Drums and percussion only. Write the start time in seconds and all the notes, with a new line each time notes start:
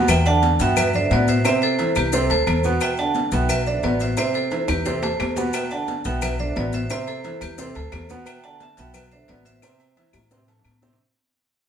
0.08 cowbell, high conga, low agogo, claves, maracas
0.26 high conga, low agogo, maracas
0.42 cowbell, high conga, maracas
0.60 cowbell, high conga, maracas
0.77 cowbell, high conga, low conga, low agogo, claves, maracas
0.94 high conga, low conga, maracas
1.11 cowbell, high conga, low agogo, maracas
1.28 cowbell, high conga, maracas
1.45 cowbell, high conga, low agogo, claves, maracas
1.62 high conga, low agogo, maracas
1.79 cowbell, high conga, low agogo, maracas
1.95 high conga, low agogo, claves, maracas
2.12 cowbell, maracas
2.30 cowbell, high conga, low agogo, maracas
2.47 cowbell, high conga, low agogo, claves, maracas
2.64 high conga, maracas
2.80 cowbell, high conga, low agogo, claves, maracas
2.97 high conga, low agogo, maracas
3.14 cowbell, high conga, maracas
3.31 cowbell, high conga, maracas
3.49 cowbell, high conga, low conga, low agogo, claves, maracas
3.66 high conga, maracas
3.83 cowbell, high conga, low agogo, maracas
4.00 cowbell, high conga, maracas
4.17 cowbell, high conga, low agogo, claves, maracas
4.34 high conga, low agogo, maracas
4.51 cowbell, high conga, high timbale, low agogo, maracas
4.68 high conga, high timbale, low agogo, claves, maracas
4.85 cowbell, low timbale, maracas
5.02 cowbell, high conga, low timbale, low agogo, maracas
5.20 cowbell, high conga, low timbale, low agogo, claves, maracas
5.37 high conga, low timbale, maracas
5.53 cowbell, low agogo, claves, maracas
5.71 high conga, low agogo, maracas
5.88 cowbell, high conga, maracas
6.05 cowbell, high conga, maracas
6.22 cowbell, high conga, low conga, low agogo, claves, maracas
6.39 high conga, low conga, maracas
6.56 cowbell, high conga, low agogo, maracas
6.73 cowbell, high conga, maracas
6.90 cowbell, high conga, low agogo, claves, maracas
7.07 high conga, low agogo, maracas
7.24 cowbell, high conga, low agogo, maracas
7.41 high conga, low agogo, claves, maracas
7.58 cowbell, maracas
7.75 cowbell, high conga, low agogo, maracas
7.92 cowbell, high conga, low timbale, low agogo, claves, maracas
8.09 high conga, maracas
8.26 cowbell, high conga, low agogo, claves, maracas
8.43 high conga, low agogo, maracas
8.60 cowbell, high conga, maracas
8.77 cowbell, high conga, maracas
8.94 cowbell, high conga, low conga, low agogo, claves, maracas
9.11 high conga, maracas
9.28 cowbell, high conga, low agogo, maracas
9.45 cowbell, high conga, maracas
9.62 cowbell, low agogo, claves, maracas
9.80 high conga, low agogo, maracas
9.96 cowbell, high conga, low agogo, maracas
10.13 high bongo, high conga, low agogo, claves, maracas
10.31 cowbell, high conga, maracas
10.37 high bongo
10.48 cowbell, low bongo, high conga, low agogo, maracas
10.59 low bongo
10.65 cowbell, high conga, low agogo, claves, maracas
10.71 low bongo
10.82 high conga, maracas
10.93 low bongo